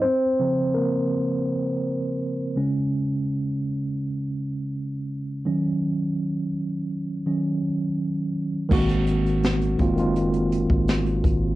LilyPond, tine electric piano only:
\new Staff \with { instrumentName = "Tine electric piano" } { \time 4/4 \key des \major \tempo 4 = 83 << { <c' c''>4 <bes bes'>2~ <bes bes'>8 r8 | r1 | r1 | <ees aes bes ces' c' ges'>4~ <ees aes bes ces' c' ges'>16 r16 <ees aes bes c' f'>16 <ees aes bes c' f'>4.~ <ees aes bes c' f'>16 r8 | } \\ { r8 <des f c'>4. r4. <des aes des'>8 | r2. r8 <ees ges des'>8~ | <ees ges des'>4 r4 <ees ges des'>8 r4. | r1 | } >> }